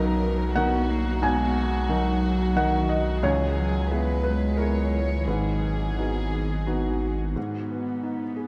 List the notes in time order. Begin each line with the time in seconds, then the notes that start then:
Already playing: B1 F#3 D#4 F#4 A#4 D#5 A#5
0.56 F#3 B3 D#4 F#4 A#4 F#5
0.90 A#3
1.22 B1 G#3 G#5
1.89 F#3 D#4 A#4
2.56 D#3 F#3 D#4 A#4 F#5
2.89 D#5
3.23 C#2 E3 E4 G#4 C#5
3.58 F#3
3.89 G#3 B3 E4 G#4 B4
4.23 G#3 B4
4.57 B3 E4 G#4 A#4 C#5
4.92 C#5
5.25 G#1 G#2 D#3 B3 D#4 F#4 G#4 B4
5.98 B3 D#4 F#4
6.66 B3 D#4 F#4
7.36 G#2 B3 D#4 G#4
7.70 B3
8.03 D#4
8.36 G#4